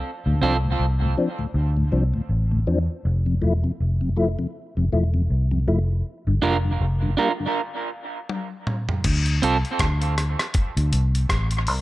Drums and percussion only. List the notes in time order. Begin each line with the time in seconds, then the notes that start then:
8.29 high tom
8.67 mid tom
8.89 floor tom
9.04 kick, closed hi-hat, crash
9.26 closed hi-hat
9.43 closed hi-hat
9.65 closed hi-hat
9.79 kick, cross-stick, closed hi-hat
10.02 closed hi-hat
10.18 cross-stick, closed hi-hat
10.39 cross-stick, closed hi-hat
10.54 kick, closed hi-hat
10.77 closed hi-hat
10.93 closed hi-hat
11.15 closed hi-hat
11.29 kick, cross-stick, closed hi-hat
11.51 closed hi-hat
11.67 open hi-hat